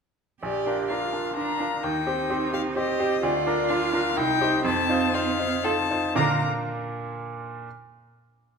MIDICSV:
0, 0, Header, 1, 4, 480
1, 0, Start_track
1, 0, Key_signature, -2, "major"
1, 0, Tempo, 470588
1, 437, Time_signature, 3, 2, 24, 8
1, 4746, Tempo, 500000
1, 8517, End_track
2, 0, Start_track
2, 0, Title_t, "Violin"
2, 0, Program_c, 0, 40
2, 432, Note_on_c, 0, 74, 76
2, 885, Note_off_c, 0, 74, 0
2, 915, Note_on_c, 0, 77, 83
2, 1384, Note_off_c, 0, 77, 0
2, 1392, Note_on_c, 0, 82, 91
2, 1865, Note_on_c, 0, 79, 88
2, 1881, Note_off_c, 0, 82, 0
2, 2576, Note_off_c, 0, 79, 0
2, 2582, Note_on_c, 0, 77, 92
2, 2664, Note_off_c, 0, 77, 0
2, 2816, Note_on_c, 0, 75, 93
2, 3296, Note_on_c, 0, 74, 89
2, 3311, Note_off_c, 0, 75, 0
2, 3758, Note_on_c, 0, 77, 101
2, 3774, Note_off_c, 0, 74, 0
2, 4248, Note_on_c, 0, 79, 119
2, 4263, Note_off_c, 0, 77, 0
2, 4741, Note_off_c, 0, 79, 0
2, 4747, Note_on_c, 0, 81, 113
2, 5214, Note_on_c, 0, 77, 110
2, 5229, Note_off_c, 0, 81, 0
2, 5693, Note_on_c, 0, 81, 105
2, 5708, Note_off_c, 0, 77, 0
2, 6185, Note_off_c, 0, 81, 0
2, 6190, Note_on_c, 0, 82, 94
2, 6457, Note_off_c, 0, 82, 0
2, 8517, End_track
3, 0, Start_track
3, 0, Title_t, "Grand piano"
3, 0, Program_c, 1, 0
3, 435, Note_on_c, 1, 34, 61
3, 628, Control_c, 1, 64, 127
3, 672, Note_off_c, 1, 34, 0
3, 678, Note_on_c, 1, 62, 46
3, 681, Note_on_c, 1, 65, 41
3, 686, Note_on_c, 1, 70, 50
3, 895, Note_off_c, 1, 62, 0
3, 897, Note_off_c, 1, 65, 0
3, 900, Note_off_c, 1, 70, 0
3, 919, Note_on_c, 1, 62, 49
3, 919, Note_on_c, 1, 65, 48
3, 925, Note_on_c, 1, 70, 57
3, 1134, Note_off_c, 1, 62, 0
3, 1134, Note_off_c, 1, 65, 0
3, 1137, Note_off_c, 1, 70, 0
3, 1154, Note_on_c, 1, 62, 38
3, 1159, Note_on_c, 1, 65, 44
3, 1161, Note_on_c, 1, 70, 44
3, 1370, Note_off_c, 1, 62, 0
3, 1373, Note_off_c, 1, 65, 0
3, 1374, Note_off_c, 1, 70, 0
3, 1399, Note_on_c, 1, 62, 43
3, 1401, Note_on_c, 1, 65, 41
3, 1405, Note_on_c, 1, 70, 47
3, 1613, Note_off_c, 1, 62, 0
3, 1614, Note_off_c, 1, 65, 0
3, 1616, Note_off_c, 1, 70, 0
3, 1633, Note_on_c, 1, 62, 42
3, 1638, Note_on_c, 1, 65, 47
3, 1640, Note_on_c, 1, 70, 54
3, 1848, Note_off_c, 1, 62, 0
3, 1851, Note_off_c, 1, 65, 0
3, 1852, Note_off_c, 1, 70, 0
3, 1873, Note_on_c, 1, 39, 61
3, 1893, Control_c, 1, 64, 0
3, 2032, Control_c, 1, 64, 127
3, 2103, Note_off_c, 1, 39, 0
3, 2106, Note_on_c, 1, 60, 53
3, 2110, Note_on_c, 1, 67, 48
3, 2117, Note_on_c, 1, 72, 52
3, 2321, Note_off_c, 1, 60, 0
3, 2323, Note_off_c, 1, 67, 0
3, 2327, Note_off_c, 1, 72, 0
3, 2348, Note_on_c, 1, 60, 56
3, 2351, Note_on_c, 1, 67, 52
3, 2355, Note_on_c, 1, 72, 55
3, 2559, Note_off_c, 1, 60, 0
3, 2561, Note_off_c, 1, 67, 0
3, 2563, Note_off_c, 1, 72, 0
3, 2582, Note_on_c, 1, 60, 46
3, 2582, Note_on_c, 1, 67, 48
3, 2588, Note_on_c, 1, 72, 50
3, 2793, Note_off_c, 1, 60, 0
3, 2794, Note_off_c, 1, 67, 0
3, 2797, Note_off_c, 1, 72, 0
3, 2812, Note_on_c, 1, 60, 51
3, 2819, Note_on_c, 1, 67, 50
3, 2821, Note_on_c, 1, 72, 52
3, 3027, Note_off_c, 1, 60, 0
3, 3031, Note_off_c, 1, 67, 0
3, 3032, Note_off_c, 1, 72, 0
3, 3053, Note_on_c, 1, 60, 53
3, 3059, Note_on_c, 1, 67, 56
3, 3063, Note_on_c, 1, 72, 55
3, 3267, Note_off_c, 1, 60, 0
3, 3271, Note_off_c, 1, 67, 0
3, 3273, Note_off_c, 1, 72, 0
3, 3293, Note_on_c, 1, 38, 79
3, 3311, Control_c, 1, 64, 0
3, 3460, Control_c, 1, 64, 127
3, 3525, Note_off_c, 1, 38, 0
3, 3536, Note_on_c, 1, 62, 62
3, 3538, Note_on_c, 1, 65, 55
3, 3543, Note_on_c, 1, 70, 67
3, 3750, Note_off_c, 1, 62, 0
3, 3751, Note_off_c, 1, 65, 0
3, 3754, Note_off_c, 1, 70, 0
3, 3771, Note_on_c, 1, 62, 61
3, 3775, Note_on_c, 1, 65, 62
3, 3778, Note_on_c, 1, 70, 66
3, 3988, Note_off_c, 1, 62, 0
3, 3990, Note_off_c, 1, 65, 0
3, 3992, Note_off_c, 1, 70, 0
3, 4010, Note_on_c, 1, 62, 57
3, 4014, Note_on_c, 1, 65, 59
3, 4021, Note_on_c, 1, 70, 61
3, 4229, Note_off_c, 1, 62, 0
3, 4231, Note_off_c, 1, 65, 0
3, 4235, Note_off_c, 1, 70, 0
3, 4253, Note_on_c, 1, 36, 71
3, 4273, Control_c, 1, 64, 0
3, 4423, Control_c, 1, 64, 127
3, 4490, Note_off_c, 1, 36, 0
3, 4495, Note_on_c, 1, 63, 61
3, 4501, Note_on_c, 1, 67, 56
3, 4505, Note_on_c, 1, 72, 66
3, 4717, Note_off_c, 1, 63, 0
3, 4720, Note_off_c, 1, 67, 0
3, 4723, Note_off_c, 1, 72, 0
3, 4737, Note_on_c, 1, 41, 82
3, 4764, Control_c, 1, 64, 0
3, 4946, Control_c, 1, 64, 127
3, 4967, Note_off_c, 1, 41, 0
3, 4975, Note_on_c, 1, 63, 68
3, 4979, Note_on_c, 1, 65, 67
3, 4981, Note_on_c, 1, 72, 68
3, 5187, Note_off_c, 1, 63, 0
3, 5189, Note_off_c, 1, 65, 0
3, 5191, Note_off_c, 1, 72, 0
3, 5210, Note_on_c, 1, 63, 65
3, 5215, Note_on_c, 1, 65, 64
3, 5217, Note_on_c, 1, 72, 72
3, 5424, Note_off_c, 1, 63, 0
3, 5427, Note_off_c, 1, 65, 0
3, 5428, Note_off_c, 1, 72, 0
3, 5452, Note_on_c, 1, 63, 52
3, 5455, Note_on_c, 1, 65, 54
3, 5460, Note_on_c, 1, 72, 57
3, 5669, Note_off_c, 1, 63, 0
3, 5671, Note_off_c, 1, 65, 0
3, 5674, Note_off_c, 1, 72, 0
3, 5696, Note_on_c, 1, 63, 54
3, 5702, Note_on_c, 1, 72, 59
3, 5703, Note_on_c, 1, 65, 61
3, 5920, Note_off_c, 1, 63, 0
3, 5923, Note_off_c, 1, 65, 0
3, 5923, Note_off_c, 1, 72, 0
3, 5945, Note_on_c, 1, 63, 51
3, 5947, Note_on_c, 1, 65, 53
3, 5956, Note_on_c, 1, 72, 59
3, 6166, Note_off_c, 1, 63, 0
3, 6167, Note_off_c, 1, 65, 0
3, 6172, Note_off_c, 1, 72, 0
3, 6188, Note_on_c, 1, 65, 75
3, 6189, Note_on_c, 1, 46, 74
3, 6189, Note_on_c, 1, 58, 78
3, 6189, Note_on_c, 1, 77, 72
3, 6190, Note_on_c, 1, 70, 72
3, 6192, Note_on_c, 1, 62, 67
3, 6210, Control_c, 1, 64, 0
3, 6381, Control_c, 1, 64, 127
3, 6456, Note_off_c, 1, 46, 0
3, 6456, Note_off_c, 1, 58, 0
3, 6456, Note_off_c, 1, 65, 0
3, 6456, Note_off_c, 1, 70, 0
3, 6456, Note_off_c, 1, 77, 0
3, 6458, Note_off_c, 1, 62, 0
3, 7644, Control_c, 1, 64, 0
3, 8517, End_track
4, 0, Start_track
4, 0, Title_t, "Cello"
4, 0, Program_c, 2, 42
4, 434, Note_on_c, 2, 67, 69
4, 919, Note_on_c, 2, 65, 58
4, 934, Note_off_c, 2, 67, 0
4, 1381, Note_off_c, 2, 65, 0
4, 1388, Note_on_c, 2, 62, 66
4, 1859, Note_off_c, 2, 62, 0
4, 1876, Note_on_c, 2, 63, 68
4, 2819, Note_on_c, 2, 67, 78
4, 2835, Note_off_c, 2, 63, 0
4, 3274, Note_off_c, 2, 67, 0
4, 3280, Note_on_c, 2, 65, 87
4, 4229, Note_off_c, 2, 65, 0
4, 4248, Note_on_c, 2, 63, 85
4, 4728, Note_off_c, 2, 63, 0
4, 4734, Note_on_c, 2, 60, 90
4, 5669, Note_off_c, 2, 60, 0
4, 5688, Note_on_c, 2, 69, 86
4, 5765, Note_off_c, 2, 69, 0
4, 6184, Note_on_c, 2, 50, 83
4, 6453, Note_off_c, 2, 50, 0
4, 8517, End_track
0, 0, End_of_file